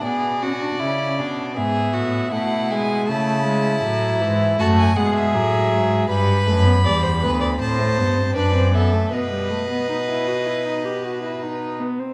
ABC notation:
X:1
M:4/4
L:1/16
Q:1/4=79
K:Bm
V:1 name="Violin"
d8 e4 f2 ^g2 | a8 a ^g f e4- e | [K:Bphr] b8 a4 d2 e2 | ^d12- d2 z2 |]
V:2 name="Violin"
^G2 F2 E2 D2 G2 F2 E4 | E8 F2 ^G6 | [K:Bphr] B4 d c B d c4 B2 A2 | B12- B2 z2 |]
V:3 name="Viola"
B,2 C D C4 B,4 A,2 ^G,2 | A,2 ^G,2 F,2 E,2 A,2 G,2 F,4 | [K:Bphr] G,2 A, B, G,2 B,2 C A, B, C D C B, A, | B, G, A, B, ^D E F E D G F E D2 B, C |]
V:4 name="Cello" clef=bass
B,,4 C,2 B,,2 ^G,,2 A,,2 B,,4 | C,4 A,,2 ^G,,2 F,,2 B,,2 A,,2 G,,2 | [K:Bphr] G,,2 F,,2 E,,2 D,,2 A,,2 G,,2 F,,4 | B,,12- B,,2 z2 |]